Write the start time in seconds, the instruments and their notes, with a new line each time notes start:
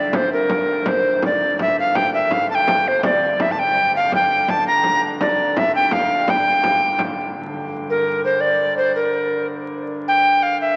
Already playing: pipe organ G2 D3, recorder D5
0.13 recorder C5, frame drum
0.31 recorder A#4, frame drum
0.49 frame drum
0.86 recorder C5, frame drum
1.22 recorder D5, frame drum
1.41 frame drum
1.59 recorder E5, frame drum
1.80 recorder F5
1.95 recorder G5, frame drum
2.14 recorder E5
2.31 recorder F5, frame drum
2.50 recorder A5, frame drum
2.55 recorder G5
2.68 frame drum
2.88 recorder C5
3.03 pipe organ G2 D3, recorder D5, frame drum
3.40 recorder E5, frame drum
3.52 recorder A5
3.58 recorder G5, frame drum
3.96 recorder F5
4.12 recorder G5, frame drum
4.48 recorder A5, frame drum
4.66 recorder A#5, frame drum
4.83 frame drum
5.21 recorder D5, frame drum
5.57 recorder E5, frame drum
5.74 recorder G5, frame drum
5.91 recorder F5, frame drum
6.28 recorder G5, frame drum
6.63 frame drum
6.81 frame drum
6.99 frame drum
7.17 frame drum
7.36 pipe organ G2 D3
7.90 recorder A#4
8.25 recorder C5
8.41 recorder D5
8.78 recorder C5
8.96 recorder A#4
10.08 recorder G5
10.43 recorder F5
10.61 recorder E5